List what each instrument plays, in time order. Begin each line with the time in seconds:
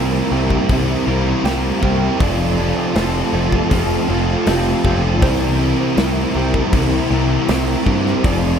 Already playing: picked electric bass C2, overdriven electric guitar C3 G3 A#3 C4 E4 A#4, clean electric guitar A#4
0.31 picked electric bass C2, overdriven electric guitar C3 G3 C4 E4 A#4, clean electric guitar G4
0.50 kick
0.69 picked electric bass C2, overdriven electric guitar C3 E3 G3 A#3 C4 E4 A#4, kick, open hi-hat
1.07 picked electric bass C2, overdriven electric guitar C3 G3 A#3 C4 E4 A#4
1.44 picked electric bass C2, overdriven electric guitar C3 G3 A#3 C4 E4 A#4, clean electric guitar G4, snare, open hi-hat
1.82 picked electric bass C2, overdriven electric guitar C3 G3 C4 E4 A#4, clean electric guitar G4, kick
2.19 picked electric bass F1, overdriven electric guitar F2 C3 F3 A3 C4 F4 A4, clean electric guitar D5, kick, open hi-hat
2.57 overdriven electric guitar F2 C3 F3 C4 F4 A4
2.94 picked electric bass F1, overdriven electric guitar F2 C3 F3 A3 C4 F4 A4, clean electric guitar C5, snare, open hi-hat
3.32 picked electric bass F1, overdriven electric guitar F2 C3 F3 C4 F4 A4, clean electric guitar A4
3.52 kick
3.70 picked electric bass F1, overdriven electric guitar F2 C3 F3 A3 C4 F4 A4, clean electric guitar F4, kick, open hi-hat
4.08 picked electric bass F1, overdriven electric guitar F2 C3 F3 C4 F4 A4
4.46 picked electric bass F1, overdriven electric guitar F2 C3 F3 A3 C4 F4 A4, clean electric guitar G4, snare, open hi-hat
4.84 picked electric bass F1, overdriven electric guitar F2 C3 F3 C4 F4 A4, clean electric guitar G4, kick
5.21 picked electric bass C2, overdriven electric guitar C3 E3 G3 C4 E4 A#4, clean electric guitar C5, kick, open hi-hat
5.59 overdriven electric guitar C3 G3 C4 E4 A#4
5.96 picked electric bass C2, overdriven electric guitar C3 G3 C4 E4 A#4, clean electric guitar A#4, snare, open hi-hat
6.34 picked electric bass C2, overdriven electric guitar C3 G3 C4 E4 A#4, clean electric guitar G4
6.54 kick
6.72 picked electric bass C2, overdriven electric guitar C3 E3 G3 C4 E4 A#4, kick, open hi-hat
7.10 picked electric bass C2, overdriven electric guitar C3 G3 C4 E4 A#4
7.48 picked electric bass C2, overdriven electric guitar C3 G3 C4 E4 A#4, clean electric guitar G4, snare, open hi-hat
7.85 picked electric bass G2, overdriven electric guitar C3 G3 C4 E4 A#4, clean electric guitar G4, kick
8.06 snare
8.23 picked electric bass F1, overdriven electric guitar F2 C3 F3 A3 C4 F4 A4, clean electric guitar D5, kick, open hi-hat